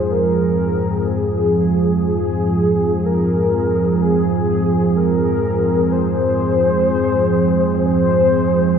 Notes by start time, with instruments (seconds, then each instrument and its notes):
Already playing: synth drone F2 F3, analog synth pad G#2 F3 C4 G#4, synth texture G#3 G#4
0.11 soft synth lead A#4
1.09 soft synth lead G#4
2.06 soft synth lead G#4
3.06 soft synth lead A#4
4.02 soft synth lead G#4
4.97 soft synth lead A#4
5.92 soft synth lead C5
7.86 soft synth lead C5